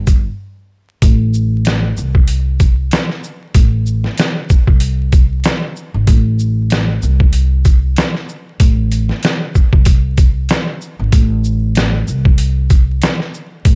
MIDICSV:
0, 0, Header, 1, 3, 480
1, 0, Start_track
1, 0, Key_signature, 0, "minor"
1, 0, Tempo, 631579
1, 776, Time_signature, 4, 2, 24, 8
1, 10451, End_track
2, 0, Start_track
2, 0, Title_t, "Upright bass"
2, 0, Program_c, 0, 32
2, 0, Note_on_c, 0, 31, 97
2, 191, Note_off_c, 0, 31, 0
2, 779, Note_on_c, 0, 33, 113
2, 1467, Note_off_c, 0, 33, 0
2, 1503, Note_on_c, 0, 36, 87
2, 2189, Note_off_c, 0, 36, 0
2, 2699, Note_on_c, 0, 33, 104
2, 3072, Note_off_c, 0, 33, 0
2, 3556, Note_on_c, 0, 36, 91
2, 4110, Note_off_c, 0, 36, 0
2, 4517, Note_on_c, 0, 32, 95
2, 4597, Note_off_c, 0, 32, 0
2, 4620, Note_on_c, 0, 33, 109
2, 5307, Note_off_c, 0, 33, 0
2, 5343, Note_on_c, 0, 36, 90
2, 6029, Note_off_c, 0, 36, 0
2, 6539, Note_on_c, 0, 33, 105
2, 6912, Note_off_c, 0, 33, 0
2, 7395, Note_on_c, 0, 36, 90
2, 7950, Note_off_c, 0, 36, 0
2, 8356, Note_on_c, 0, 32, 91
2, 8436, Note_off_c, 0, 32, 0
2, 8459, Note_on_c, 0, 33, 111
2, 9147, Note_off_c, 0, 33, 0
2, 9181, Note_on_c, 0, 36, 90
2, 9868, Note_off_c, 0, 36, 0
2, 10379, Note_on_c, 0, 33, 104
2, 10451, Note_off_c, 0, 33, 0
2, 10451, End_track
3, 0, Start_track
3, 0, Title_t, "Drums"
3, 53, Note_on_c, 9, 42, 57
3, 53, Note_on_c, 9, 82, 57
3, 56, Note_on_c, 9, 36, 92
3, 129, Note_off_c, 9, 42, 0
3, 129, Note_off_c, 9, 82, 0
3, 132, Note_off_c, 9, 36, 0
3, 775, Note_on_c, 9, 42, 97
3, 776, Note_on_c, 9, 36, 118
3, 851, Note_off_c, 9, 42, 0
3, 852, Note_off_c, 9, 36, 0
3, 1017, Note_on_c, 9, 82, 62
3, 1093, Note_off_c, 9, 82, 0
3, 1254, Note_on_c, 9, 42, 72
3, 1269, Note_on_c, 9, 38, 109
3, 1330, Note_off_c, 9, 42, 0
3, 1345, Note_off_c, 9, 38, 0
3, 1498, Note_on_c, 9, 82, 69
3, 1574, Note_off_c, 9, 82, 0
3, 1632, Note_on_c, 9, 36, 99
3, 1708, Note_off_c, 9, 36, 0
3, 1729, Note_on_c, 9, 42, 99
3, 1805, Note_off_c, 9, 42, 0
3, 1974, Note_on_c, 9, 42, 58
3, 1974, Note_on_c, 9, 82, 58
3, 1976, Note_on_c, 9, 36, 100
3, 2050, Note_off_c, 9, 42, 0
3, 2050, Note_off_c, 9, 82, 0
3, 2052, Note_off_c, 9, 36, 0
3, 2214, Note_on_c, 9, 42, 78
3, 2228, Note_on_c, 9, 38, 115
3, 2290, Note_off_c, 9, 42, 0
3, 2304, Note_off_c, 9, 38, 0
3, 2352, Note_on_c, 9, 38, 36
3, 2428, Note_off_c, 9, 38, 0
3, 2458, Note_on_c, 9, 82, 46
3, 2534, Note_off_c, 9, 82, 0
3, 2694, Note_on_c, 9, 42, 94
3, 2696, Note_on_c, 9, 36, 115
3, 2770, Note_off_c, 9, 42, 0
3, 2772, Note_off_c, 9, 36, 0
3, 2936, Note_on_c, 9, 82, 61
3, 3012, Note_off_c, 9, 82, 0
3, 3072, Note_on_c, 9, 38, 37
3, 3148, Note_off_c, 9, 38, 0
3, 3173, Note_on_c, 9, 42, 74
3, 3188, Note_on_c, 9, 38, 113
3, 3249, Note_off_c, 9, 42, 0
3, 3264, Note_off_c, 9, 38, 0
3, 3416, Note_on_c, 9, 82, 68
3, 3420, Note_on_c, 9, 36, 95
3, 3492, Note_off_c, 9, 82, 0
3, 3496, Note_off_c, 9, 36, 0
3, 3552, Note_on_c, 9, 36, 94
3, 3628, Note_off_c, 9, 36, 0
3, 3649, Note_on_c, 9, 42, 104
3, 3725, Note_off_c, 9, 42, 0
3, 3894, Note_on_c, 9, 42, 58
3, 3894, Note_on_c, 9, 82, 58
3, 3896, Note_on_c, 9, 36, 96
3, 3970, Note_off_c, 9, 42, 0
3, 3970, Note_off_c, 9, 82, 0
3, 3972, Note_off_c, 9, 36, 0
3, 4133, Note_on_c, 9, 42, 78
3, 4147, Note_on_c, 9, 38, 113
3, 4209, Note_off_c, 9, 42, 0
3, 4223, Note_off_c, 9, 38, 0
3, 4378, Note_on_c, 9, 82, 45
3, 4454, Note_off_c, 9, 82, 0
3, 4615, Note_on_c, 9, 42, 93
3, 4617, Note_on_c, 9, 36, 116
3, 4691, Note_off_c, 9, 42, 0
3, 4693, Note_off_c, 9, 36, 0
3, 4857, Note_on_c, 9, 82, 60
3, 4933, Note_off_c, 9, 82, 0
3, 5094, Note_on_c, 9, 42, 73
3, 5109, Note_on_c, 9, 38, 118
3, 5170, Note_off_c, 9, 42, 0
3, 5185, Note_off_c, 9, 38, 0
3, 5337, Note_on_c, 9, 82, 67
3, 5413, Note_off_c, 9, 82, 0
3, 5473, Note_on_c, 9, 36, 99
3, 5549, Note_off_c, 9, 36, 0
3, 5569, Note_on_c, 9, 42, 103
3, 5645, Note_off_c, 9, 42, 0
3, 5813, Note_on_c, 9, 42, 59
3, 5813, Note_on_c, 9, 82, 58
3, 5816, Note_on_c, 9, 36, 95
3, 5889, Note_off_c, 9, 42, 0
3, 5889, Note_off_c, 9, 82, 0
3, 5892, Note_off_c, 9, 36, 0
3, 6052, Note_on_c, 9, 42, 79
3, 6066, Note_on_c, 9, 38, 115
3, 6128, Note_off_c, 9, 42, 0
3, 6142, Note_off_c, 9, 38, 0
3, 6191, Note_on_c, 9, 38, 35
3, 6267, Note_off_c, 9, 38, 0
3, 6298, Note_on_c, 9, 82, 46
3, 6374, Note_off_c, 9, 82, 0
3, 6534, Note_on_c, 9, 42, 94
3, 6536, Note_on_c, 9, 36, 118
3, 6610, Note_off_c, 9, 42, 0
3, 6612, Note_off_c, 9, 36, 0
3, 6776, Note_on_c, 9, 42, 62
3, 6776, Note_on_c, 9, 82, 63
3, 6852, Note_off_c, 9, 42, 0
3, 6852, Note_off_c, 9, 82, 0
3, 6911, Note_on_c, 9, 38, 36
3, 6987, Note_off_c, 9, 38, 0
3, 7013, Note_on_c, 9, 42, 72
3, 7028, Note_on_c, 9, 38, 118
3, 7089, Note_off_c, 9, 42, 0
3, 7104, Note_off_c, 9, 38, 0
3, 7257, Note_on_c, 9, 82, 69
3, 7260, Note_on_c, 9, 36, 90
3, 7333, Note_off_c, 9, 82, 0
3, 7336, Note_off_c, 9, 36, 0
3, 7392, Note_on_c, 9, 36, 97
3, 7468, Note_off_c, 9, 36, 0
3, 7488, Note_on_c, 9, 42, 99
3, 7495, Note_on_c, 9, 36, 104
3, 7564, Note_off_c, 9, 42, 0
3, 7571, Note_off_c, 9, 36, 0
3, 7733, Note_on_c, 9, 42, 60
3, 7733, Note_on_c, 9, 82, 58
3, 7735, Note_on_c, 9, 36, 96
3, 7809, Note_off_c, 9, 42, 0
3, 7809, Note_off_c, 9, 82, 0
3, 7811, Note_off_c, 9, 36, 0
3, 7971, Note_on_c, 9, 42, 77
3, 7985, Note_on_c, 9, 38, 116
3, 8047, Note_off_c, 9, 42, 0
3, 8061, Note_off_c, 9, 38, 0
3, 8217, Note_on_c, 9, 82, 45
3, 8293, Note_off_c, 9, 82, 0
3, 8454, Note_on_c, 9, 42, 95
3, 8456, Note_on_c, 9, 36, 112
3, 8530, Note_off_c, 9, 42, 0
3, 8532, Note_off_c, 9, 36, 0
3, 8696, Note_on_c, 9, 82, 59
3, 8772, Note_off_c, 9, 82, 0
3, 8932, Note_on_c, 9, 42, 74
3, 8947, Note_on_c, 9, 38, 112
3, 9008, Note_off_c, 9, 42, 0
3, 9023, Note_off_c, 9, 38, 0
3, 9177, Note_on_c, 9, 82, 68
3, 9253, Note_off_c, 9, 82, 0
3, 9312, Note_on_c, 9, 36, 94
3, 9388, Note_off_c, 9, 36, 0
3, 9409, Note_on_c, 9, 42, 99
3, 9485, Note_off_c, 9, 42, 0
3, 9653, Note_on_c, 9, 42, 61
3, 9653, Note_on_c, 9, 82, 57
3, 9655, Note_on_c, 9, 36, 96
3, 9729, Note_off_c, 9, 42, 0
3, 9729, Note_off_c, 9, 82, 0
3, 9731, Note_off_c, 9, 36, 0
3, 9892, Note_on_c, 9, 42, 80
3, 9906, Note_on_c, 9, 38, 113
3, 9968, Note_off_c, 9, 42, 0
3, 9982, Note_off_c, 9, 38, 0
3, 10031, Note_on_c, 9, 38, 36
3, 10107, Note_off_c, 9, 38, 0
3, 10139, Note_on_c, 9, 82, 45
3, 10215, Note_off_c, 9, 82, 0
3, 10374, Note_on_c, 9, 42, 95
3, 10376, Note_on_c, 9, 36, 116
3, 10450, Note_off_c, 9, 42, 0
3, 10451, Note_off_c, 9, 36, 0
3, 10451, End_track
0, 0, End_of_file